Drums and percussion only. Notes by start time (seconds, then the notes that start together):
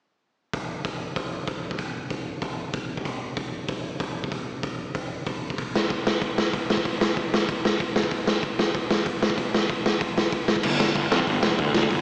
0.53 kick, open hi-hat
0.85 kick, open hi-hat
1.16 kick, open hi-hat
1.47 kick, open hi-hat
1.71 kick
1.78 kick, open hi-hat
2.10 kick, open hi-hat
2.42 kick, open hi-hat
2.73 kick, open hi-hat
2.97 kick
3.05 kick, open hi-hat
3.37 kick, open hi-hat
3.68 kick, open hi-hat
4.00 kick, open hi-hat
4.24 kick
4.32 kick, open hi-hat
4.63 kick, open hi-hat
4.95 kick, open hi-hat
5.26 kick, open hi-hat
5.50 kick
5.58 kick, open hi-hat
5.75 snare
5.90 kick, open hi-hat
6.07 snare
6.22 kick, open hi-hat
6.38 snare
6.54 kick, open hi-hat
6.70 snare
6.77 kick
6.85 kick, open hi-hat
7.01 snare
7.17 kick, open hi-hat
7.34 snare
7.49 kick, open hi-hat
7.65 snare
7.80 kick, open hi-hat
7.96 snare
8.04 kick
8.11 kick, open hi-hat
8.27 snare
8.43 kick, open hi-hat
8.59 snare
8.75 kick, open hi-hat
8.91 snare
9.06 kick, open hi-hat
9.23 snare
9.30 kick
9.38 kick, open hi-hat
9.54 snare
9.69 kick, open hi-hat
9.86 snare
10.01 kick, open hi-hat
10.18 snare
10.32 kick, open hi-hat
10.48 snare
10.56 kick
10.63 kick, crash
10.80 snare
10.95 kick, open hi-hat
11.12 snare
11.20 kick
11.27 kick, open hi-hat
11.43 snare
11.58 kick, open hi-hat
11.74 snare
11.83 kick
11.90 kick, open hi-hat